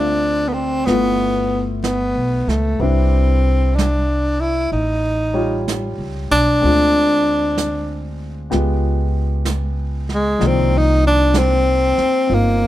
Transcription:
Already playing: D2 A3 C4 D4 F4 E5
0.48 B3
0.53 C4
0.85 G1 A3 B3 E4 F4, brush sweep, snare
1.84 B3, brush sweep, snare, hi-hat pedal
2.15 B1
2.47 C#2 A3, snare
2.79 C2 G3 C4 D4 E4 B4, brush sweep
3.75 D4, brush sweep, snare, hi-hat pedal
4.40 E4
4.72 A1 D#4, brush sweep
5.34 G3 F4 G4 C#5
5.68 brush sweep, snare, hi-hat pedal
5.98 C#2
6.31 B1 D4
6.60 G#3 C4, brush sweep
6.64 D2 D4 F4
7.58 brush sweep, snare, hi-hat pedal
8.50 C#2 G#3 B3 F4 G4, brush sweep, snare
9.45 brush sweep, snare, hi-hat pedal
10.09 snare
10.13 G#3
10.39 C2 D#3 F3 A#3 D5, brush sweep, snare
10.46 C4
10.78 D#4
11.07 D4
11.34 brush sweep, snare, hi-hat pedal
11.38 C4
11.98 muted upright bass stroke, snare
12.27 G1 C4 D#4 F4, brush sweep
12.34 A#3

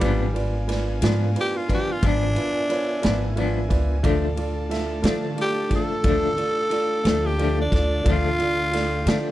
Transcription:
Already playing: G3
0.00 G#1 G#2 F3 B3 C4 D#4 F4 F#4 B4 D5 F5 G#5, kick, ride
0.04 D4
0.34 B3 D4 F4 A#4 B4 D5, ride
0.68 F4 B4 D5, snare, ride
1.01 G#2 F3 B3 D4 F4 B4 D5, snare, ride
1.36 F4 B4 D5, ride
1.40 G4
1.57 F4
1.68 B3 D4 F4 B4 D5, kick, ride
1.72 F3 G4
1.92 F4
2.02 G#1 G#2 F3 B3 D4 F4 B4 D5 E5, kick, ride
2.08 D4
2.36 F4 B4 D5, ride
2.69 F4 B4 C#5, ride
3.02 G#1 F3 B3 D4 F4 B4 D5, snare, ride
3.36 G#2 F3 B3 D4 F4 B4 D5, ride
3.69 C#2 F4 B4 D5, kick, ride
4.02 D2 D3 F3 A3 D4 F4 A4 D5 F5 A5, kick, ride
4.36 F4 A4 D5, ride
4.69 F4 A4 E5, snare, ride
5.02 D3 A3 D4 F4 A4 D5, snare, ride
5.06 F3
5.36 F4 A4 D5, ride
5.41 G4
5.69 F3 A3 D4 F4 A4 D5, kick, ride
5.75 A4
6.03 D2 D3 F3 A3 F4 A4 D5, kick, ride
6.07 D4
6.36 F4 A4 D5, ride
6.70 F4 A4 D5, ride
7.04 D2 A3 D4 F4 A4 D5, snare, ride
7.09 F3
7.26 G4
7.38 D3 F3 A3 F4 A4 D5, ride
7.43 D4
7.61 D4
7.71 D2 F4 A4 D5, kick, snare, ride
8.03 D2 D3 D4 F4 A4 D5 G5, kick, ride
8.08 F3 A3 D4 F4
8.39 F4 A4 D5, ride
8.72 F4 A4 D5, snare, ride
9.06 D3 A3 D4 F4 A4 D5, snare, ride
9.10 F3

